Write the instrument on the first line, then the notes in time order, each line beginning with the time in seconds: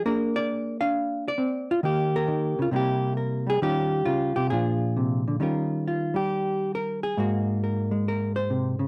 hollow-body jazz guitar
0.06 A#3 D4 G#4 A#4
0.36 D5
0.81 D4 F5
1.28 D5
1.38 C4
1.71 F4
1.83 D#3 A#3 G4
2.16 A#4
2.28 D#3
2.59 C#3 F4
2.71 C3 G3 A#3 E4
2.76 G4
3.17 A#4
3.47 G3 G#4
3.62 D#3 G3 C#4 F4 G4
4.05 C#3 F4
4.36 C3 G4
4.50 A#2 F3 D4 F4 G#4
4.96 C3
5.28 D3
5.40 D#3 G3 C#4 F4 A#4
5.88 F4
6.14 G3 G4
6.75 A#4
7.03 G#4
7.17 G#2 G#3 A#3 F#4
7.64 A#4
7.91 G#3
8.08 A#4
8.36 C5
8.50 C3
8.79 C#3